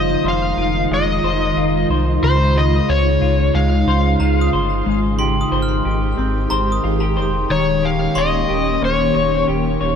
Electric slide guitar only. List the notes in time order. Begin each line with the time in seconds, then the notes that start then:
Already playing: D#5
0.28 F5
0.94 D#5
2.24 C5
2.57 D#5
2.90 C#5
3.55 F5
7.51 C#5
7.85 F5
8.18 D#5
8.85 C#5